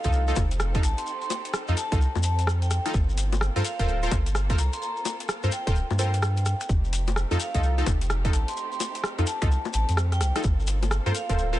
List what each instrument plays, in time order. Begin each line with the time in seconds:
Already playing: violin section C4 D#4 G4 A4, vibraphone F5
0.04 sub bass C2, synth stab D#4 F4 A4, kick, closed hi-hat, shekere
0.12 shekere
0.28 synth stab D#4 F4 A4, shekere
0.36 sub bass F1, kick, open hi-hat, high bongo, shekere
0.51 closed hi-hat, shekere
0.60 cross-stick, shekere
0.75 synth stab D#4 F4 A4, kick, closed hi-hat, shekere
0.83 sub bass A1, vibraphone A5, finger snap, open hi-hat, shekere
0.98 vibraphone C6, closed hi-hat, shekere
1.06 shekere
1.21 vibraphone C6, shekere
1.30 open hi-hat, high bongo, shekere
1.45 closed hi-hat, shekere
1.54 cross-stick, shekere
1.68 sub bass F2, synth stab D#4 F4 A4, shekere
1.77 vibraphone A5, open hi-hat, shekere
1.92 sub bass C2, synth stab D#4 F4 A4, vibraphone A5, kick, closed hi-hat, shekere
2.01 shekere
2.15 sub bass F2, high bongo, shekere
2.23 vibraphone A5, open hi-hat, shekere
2.39 closed hi-hat, shekere
2.47 cross-stick, shekere
2.62 vibraphone G5, closed hi-hat, shekere
2.71 vibraphone G5, cross-stick, open hi-hat, shekere
2.86 synth stab D#4 F4 A4, finger snap, closed hi-hat, shekere
2.94 sub bass G1, violin section A#3 F4 A4, kick, shekere
3.09 shekere
3.18 open hi-hat, shekere
3.32 closed hi-hat, high bongo, shekere
3.41 cross-stick, shekere
3.56 sub bass G2, synth stab F4 A4 A#4 C5, shekere
3.65 vibraphone F5, open hi-hat, shekere
3.79 sub bass D1, synth stab F4 A4 A#4 C5, kick, closed hi-hat, shekere
3.88 shekere
4.03 synth stab F4 A4 A#4 C5, shekere
4.11 sub bass G1, kick, open hi-hat, high bongo, shekere
4.26 closed hi-hat, shekere
4.35 cross-stick, shekere
4.50 synth stab F4 A4 A#4 C5, kick, closed hi-hat, shekere
4.58 sub bass C2, vibraphone A#5, finger snap, open hi-hat, shekere
4.73 vibraphone C6, closed hi-hat, shekere
4.82 vibraphone A#5, shekere
4.97 vibraphone A#5, shekere
5.05 open hi-hat, high bongo, shekere
5.20 closed hi-hat, shekere
5.29 cross-stick, shekere
5.43 sub bass G2, synth stab F4 A4 A#4 C5, shekere
5.52 vibraphone G5, open hi-hat, shekere
5.67 sub bass D1, synth stab F4 A4 A#4 C5, vibraphone G5, kick, closed hi-hat, shekere
5.75 shekere
5.90 sub bass G2, high bongo, shekere
5.99 synth stab F4 A4 A#4 C5, vibraphone G5, open hi-hat, shekere
6.14 closed hi-hat, shekere
6.22 cross-stick, shekere
6.37 closed hi-hat, shekere
6.46 cross-stick, open hi-hat, shekere
6.61 finger snap, closed hi-hat, shekere
6.69 sub bass F1, violin section A3 C4 D#4 G4, kick, shekere
6.84 shekere
6.93 open hi-hat, shekere
7.08 closed hi-hat, high bongo, shekere
7.16 cross-stick, shekere
7.31 sub bass F2, synth stab D#4 F4 A4, shekere
7.40 vibraphone F5, open hi-hat, shekere
7.54 sub bass C2, synth stab D#4 F4 A4, kick, closed hi-hat, shekere
7.63 shekere
7.78 synth stab D#4 F4 A4, shekere
7.86 sub bass F1, kick, open hi-hat, high bongo, shekere
8.01 closed hi-hat, shekere
8.10 cross-stick, shekere
8.25 synth stab D#4 F4 A4, kick, closed hi-hat, shekere
8.33 sub bass A1, vibraphone A5, finger snap, open hi-hat, shekere
8.48 vibraphone C6, closed hi-hat, shekere
8.57 shekere
8.72 vibraphone C6, shekere
8.80 open hi-hat, high bongo, shekere
8.95 closed hi-hat, shekere
9.04 cross-stick, shekere
9.18 sub bass F2, synth stab D#4 F4 A4, closed hi-hat, shekere
9.27 vibraphone A5, open hi-hat, shekere
9.42 sub bass C2, synth stab D#4 F4 A4, vibraphone A5, finger snap, kick, closed hi-hat, shekere
9.51 shekere
9.65 high bongo, shekere
9.73 sub bass A1, vibraphone A5, open hi-hat, shekere
9.89 sub bass F2, closed hi-hat, shekere
9.97 cross-stick, shekere
10.12 vibraphone G5, cross-stick, closed hi-hat, shekere
10.21 sub bass C2, vibraphone G5, cross-stick, open hi-hat, shekere
10.36 synth stab D#4 F4 A4, cross-stick, closed hi-hat, shekere
10.43 sub bass G1, violin section A#3 F4 A4, kick, shekere
10.60 shekere
10.67 open hi-hat, shekere
10.83 closed hi-hat, high bongo, shekere
10.91 cross-stick, shekere
11.06 sub bass G2, synth stab F4 A4 A#4 C5, shekere
11.15 vibraphone F5, open hi-hat, shekere
11.29 sub bass D1, synth stab F4 A4 A#4 C5, kick, closed hi-hat, shekere
11.38 shekere
11.53 synth stab F4 A4 A#4 C5, shekere